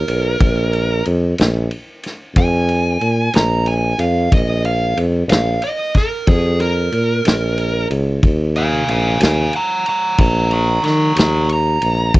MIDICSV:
0, 0, Header, 1, 4, 480
1, 0, Start_track
1, 0, Key_signature, -5, "minor"
1, 0, Tempo, 652174
1, 293, Time_signature, 12, 3, 24, 8
1, 8978, End_track
2, 0, Start_track
2, 0, Title_t, "Lead electric guitar"
2, 0, Program_c, 0, 29
2, 0, Note_on_c, 0, 70, 86
2, 763, Note_off_c, 0, 70, 0
2, 1751, Note_on_c, 0, 80, 117
2, 2443, Note_off_c, 0, 80, 0
2, 2469, Note_on_c, 0, 82, 107
2, 2696, Note_off_c, 0, 82, 0
2, 2706, Note_on_c, 0, 80, 86
2, 2935, Note_off_c, 0, 80, 0
2, 2943, Note_on_c, 0, 77, 89
2, 3173, Note_off_c, 0, 77, 0
2, 3189, Note_on_c, 0, 75, 92
2, 3417, Note_off_c, 0, 75, 0
2, 3424, Note_on_c, 0, 77, 105
2, 3654, Note_off_c, 0, 77, 0
2, 3901, Note_on_c, 0, 77, 102
2, 4132, Note_off_c, 0, 77, 0
2, 4149, Note_on_c, 0, 75, 80
2, 4377, Note_off_c, 0, 75, 0
2, 4397, Note_on_c, 0, 70, 106
2, 4631, Note_off_c, 0, 70, 0
2, 4631, Note_on_c, 0, 68, 86
2, 4857, Note_off_c, 0, 68, 0
2, 4865, Note_on_c, 0, 70, 100
2, 5793, Note_off_c, 0, 70, 0
2, 6304, Note_on_c, 0, 77, 91
2, 6312, Note_on_c, 0, 80, 92
2, 6538, Note_off_c, 0, 80, 0
2, 6539, Note_off_c, 0, 77, 0
2, 6548, Note_on_c, 0, 77, 82
2, 6555, Note_on_c, 0, 80, 92
2, 6766, Note_off_c, 0, 77, 0
2, 6779, Note_off_c, 0, 80, 0
2, 6796, Note_on_c, 0, 77, 80
2, 6802, Note_on_c, 0, 80, 95
2, 7010, Note_off_c, 0, 77, 0
2, 7023, Note_off_c, 0, 80, 0
2, 7033, Note_on_c, 0, 78, 70
2, 7038, Note_on_c, 0, 82, 76
2, 7249, Note_off_c, 0, 78, 0
2, 7260, Note_off_c, 0, 82, 0
2, 7277, Note_on_c, 0, 78, 74
2, 7281, Note_on_c, 0, 82, 86
2, 7490, Note_off_c, 0, 78, 0
2, 7502, Note_off_c, 0, 82, 0
2, 7506, Note_on_c, 0, 78, 75
2, 7512, Note_on_c, 0, 82, 91
2, 7725, Note_off_c, 0, 78, 0
2, 7737, Note_off_c, 0, 82, 0
2, 7747, Note_on_c, 0, 82, 78
2, 7750, Note_on_c, 0, 85, 77
2, 7966, Note_off_c, 0, 82, 0
2, 7975, Note_off_c, 0, 85, 0
2, 7986, Note_on_c, 0, 82, 78
2, 7990, Note_on_c, 0, 85, 89
2, 8205, Note_off_c, 0, 82, 0
2, 8216, Note_off_c, 0, 85, 0
2, 8234, Note_on_c, 0, 82, 82
2, 8237, Note_on_c, 0, 85, 94
2, 8449, Note_off_c, 0, 82, 0
2, 8459, Note_off_c, 0, 85, 0
2, 8485, Note_on_c, 0, 82, 101
2, 8935, Note_off_c, 0, 82, 0
2, 8978, End_track
3, 0, Start_track
3, 0, Title_t, "Tuba"
3, 0, Program_c, 1, 58
3, 55, Note_on_c, 1, 35, 90
3, 275, Note_off_c, 1, 35, 0
3, 296, Note_on_c, 1, 34, 93
3, 746, Note_off_c, 1, 34, 0
3, 783, Note_on_c, 1, 41, 94
3, 1000, Note_off_c, 1, 41, 0
3, 1023, Note_on_c, 1, 34, 114
3, 1240, Note_off_c, 1, 34, 0
3, 1734, Note_on_c, 1, 41, 103
3, 2186, Note_off_c, 1, 41, 0
3, 2214, Note_on_c, 1, 46, 81
3, 2436, Note_off_c, 1, 46, 0
3, 2456, Note_on_c, 1, 34, 95
3, 2907, Note_off_c, 1, 34, 0
3, 2931, Note_on_c, 1, 41, 87
3, 3155, Note_off_c, 1, 41, 0
3, 3179, Note_on_c, 1, 34, 94
3, 3629, Note_off_c, 1, 34, 0
3, 3652, Note_on_c, 1, 41, 88
3, 3876, Note_off_c, 1, 41, 0
3, 3886, Note_on_c, 1, 34, 106
3, 4113, Note_off_c, 1, 34, 0
3, 4618, Note_on_c, 1, 41, 104
3, 5069, Note_off_c, 1, 41, 0
3, 5093, Note_on_c, 1, 46, 85
3, 5316, Note_off_c, 1, 46, 0
3, 5337, Note_on_c, 1, 34, 94
3, 5788, Note_off_c, 1, 34, 0
3, 5817, Note_on_c, 1, 37, 85
3, 6038, Note_off_c, 1, 37, 0
3, 6056, Note_on_c, 1, 39, 82
3, 6507, Note_off_c, 1, 39, 0
3, 6529, Note_on_c, 1, 34, 87
3, 6754, Note_off_c, 1, 34, 0
3, 6771, Note_on_c, 1, 39, 107
3, 6994, Note_off_c, 1, 39, 0
3, 7499, Note_on_c, 1, 34, 104
3, 7948, Note_off_c, 1, 34, 0
3, 7971, Note_on_c, 1, 51, 92
3, 8194, Note_off_c, 1, 51, 0
3, 8212, Note_on_c, 1, 39, 95
3, 8664, Note_off_c, 1, 39, 0
3, 8693, Note_on_c, 1, 34, 82
3, 8915, Note_off_c, 1, 34, 0
3, 8939, Note_on_c, 1, 39, 82
3, 8978, Note_off_c, 1, 39, 0
3, 8978, End_track
4, 0, Start_track
4, 0, Title_t, "Drums"
4, 58, Note_on_c, 9, 51, 71
4, 132, Note_off_c, 9, 51, 0
4, 297, Note_on_c, 9, 51, 92
4, 298, Note_on_c, 9, 36, 115
4, 371, Note_off_c, 9, 51, 0
4, 372, Note_off_c, 9, 36, 0
4, 538, Note_on_c, 9, 51, 62
4, 612, Note_off_c, 9, 51, 0
4, 776, Note_on_c, 9, 51, 60
4, 849, Note_off_c, 9, 51, 0
4, 1017, Note_on_c, 9, 51, 73
4, 1037, Note_on_c, 9, 38, 120
4, 1091, Note_off_c, 9, 51, 0
4, 1110, Note_off_c, 9, 38, 0
4, 1258, Note_on_c, 9, 51, 64
4, 1331, Note_off_c, 9, 51, 0
4, 1497, Note_on_c, 9, 51, 66
4, 1517, Note_on_c, 9, 38, 37
4, 1570, Note_off_c, 9, 51, 0
4, 1590, Note_off_c, 9, 38, 0
4, 1736, Note_on_c, 9, 51, 86
4, 1738, Note_on_c, 9, 36, 114
4, 1809, Note_off_c, 9, 51, 0
4, 1812, Note_off_c, 9, 36, 0
4, 1977, Note_on_c, 9, 51, 61
4, 2050, Note_off_c, 9, 51, 0
4, 2216, Note_on_c, 9, 51, 56
4, 2290, Note_off_c, 9, 51, 0
4, 2454, Note_on_c, 9, 51, 82
4, 2474, Note_on_c, 9, 38, 125
4, 2528, Note_off_c, 9, 51, 0
4, 2548, Note_off_c, 9, 38, 0
4, 2694, Note_on_c, 9, 51, 64
4, 2767, Note_off_c, 9, 51, 0
4, 2936, Note_on_c, 9, 51, 73
4, 3009, Note_off_c, 9, 51, 0
4, 3180, Note_on_c, 9, 36, 119
4, 3180, Note_on_c, 9, 51, 93
4, 3253, Note_off_c, 9, 36, 0
4, 3254, Note_off_c, 9, 51, 0
4, 3419, Note_on_c, 9, 51, 70
4, 3493, Note_off_c, 9, 51, 0
4, 3660, Note_on_c, 9, 51, 66
4, 3734, Note_off_c, 9, 51, 0
4, 3895, Note_on_c, 9, 51, 92
4, 3915, Note_on_c, 9, 38, 121
4, 3969, Note_off_c, 9, 51, 0
4, 3989, Note_off_c, 9, 38, 0
4, 4135, Note_on_c, 9, 51, 69
4, 4209, Note_off_c, 9, 51, 0
4, 4376, Note_on_c, 9, 51, 75
4, 4379, Note_on_c, 9, 36, 83
4, 4396, Note_on_c, 9, 38, 33
4, 4449, Note_off_c, 9, 51, 0
4, 4452, Note_off_c, 9, 36, 0
4, 4469, Note_off_c, 9, 38, 0
4, 4615, Note_on_c, 9, 51, 94
4, 4618, Note_on_c, 9, 36, 125
4, 4689, Note_off_c, 9, 51, 0
4, 4692, Note_off_c, 9, 36, 0
4, 4857, Note_on_c, 9, 51, 61
4, 4931, Note_off_c, 9, 51, 0
4, 5096, Note_on_c, 9, 51, 62
4, 5169, Note_off_c, 9, 51, 0
4, 5336, Note_on_c, 9, 51, 80
4, 5356, Note_on_c, 9, 38, 117
4, 5410, Note_off_c, 9, 51, 0
4, 5430, Note_off_c, 9, 38, 0
4, 5576, Note_on_c, 9, 51, 64
4, 5650, Note_off_c, 9, 51, 0
4, 5819, Note_on_c, 9, 51, 63
4, 5893, Note_off_c, 9, 51, 0
4, 6056, Note_on_c, 9, 51, 78
4, 6058, Note_on_c, 9, 36, 113
4, 6130, Note_off_c, 9, 51, 0
4, 6131, Note_off_c, 9, 36, 0
4, 6298, Note_on_c, 9, 51, 65
4, 6371, Note_off_c, 9, 51, 0
4, 6539, Note_on_c, 9, 51, 64
4, 6612, Note_off_c, 9, 51, 0
4, 6775, Note_on_c, 9, 51, 92
4, 6795, Note_on_c, 9, 38, 105
4, 6848, Note_off_c, 9, 51, 0
4, 6868, Note_off_c, 9, 38, 0
4, 7014, Note_on_c, 9, 51, 66
4, 7087, Note_off_c, 9, 51, 0
4, 7256, Note_on_c, 9, 51, 65
4, 7329, Note_off_c, 9, 51, 0
4, 7495, Note_on_c, 9, 51, 92
4, 7497, Note_on_c, 9, 36, 119
4, 7569, Note_off_c, 9, 51, 0
4, 7571, Note_off_c, 9, 36, 0
4, 7734, Note_on_c, 9, 51, 73
4, 7808, Note_off_c, 9, 51, 0
4, 7976, Note_on_c, 9, 51, 58
4, 7996, Note_on_c, 9, 38, 31
4, 8049, Note_off_c, 9, 51, 0
4, 8069, Note_off_c, 9, 38, 0
4, 8217, Note_on_c, 9, 51, 92
4, 8237, Note_on_c, 9, 38, 112
4, 8291, Note_off_c, 9, 51, 0
4, 8311, Note_off_c, 9, 38, 0
4, 8459, Note_on_c, 9, 51, 68
4, 8533, Note_off_c, 9, 51, 0
4, 8696, Note_on_c, 9, 51, 73
4, 8770, Note_off_c, 9, 51, 0
4, 8937, Note_on_c, 9, 51, 87
4, 8938, Note_on_c, 9, 36, 120
4, 8978, Note_off_c, 9, 36, 0
4, 8978, Note_off_c, 9, 51, 0
4, 8978, End_track
0, 0, End_of_file